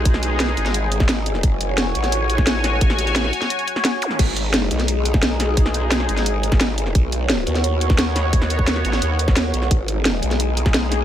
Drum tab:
CC |----------------|----------------|----------------|x---------------|
HH |x-x-x-xxx-x-x-x-|x-x-x-xxx-x-x-x-|x-xxx-xxxxx-x-x-|x-x-x-xxx-x-x-x-|
SD |-o--oo-o---oo--o|----o--o---oo-o-|-o--oo-o---oo--o|----o--o---oo-o-|
BD |o----------o----|o----------o----|o---------------|o----------o----|

CC |----------------|----------------|----------------|----------------|
HH |x-x-x-xxx-x-x-x-|x-x-x-xxx-x-x-x-|x-x-x-xxx-x-x-x-|x-x-x-xxx-x-x-x-|
SD |-o--oo-o---oo--o|----o--o---oo-o-|-o--oo-o---oo--o|----o--o---oo-o-|
BD |o----------o----|o----------o----|o--o-------o----|o----------o----|